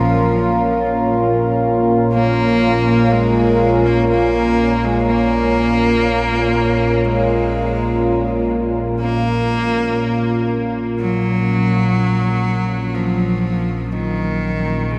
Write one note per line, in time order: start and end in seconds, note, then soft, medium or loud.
0.00 14.99 A#1 medium
0.00 14.99 A#2 medium
0.00 1.13 F3 medium
0.00 14.99 C#4 medium
0.00 14.99 F4 medium
0.00 14.99 A#4 medium
2.13 3.14 A#3 medium
3.12 3.88 G#3 medium
3.86 4.09 A#3 medium
4.10 4.87 A#3 medium
4.85 5.11 G#3 medium
5.10 7.06 A#3 medium
7.05 8.51 G#3 medium
9.00 10.44 A#3 loud
10.99 12.96 F#3 loud
12.94 13.94 F3 medium
13.93 14.92 D#3 medium
14.90 14.99 C#3 medium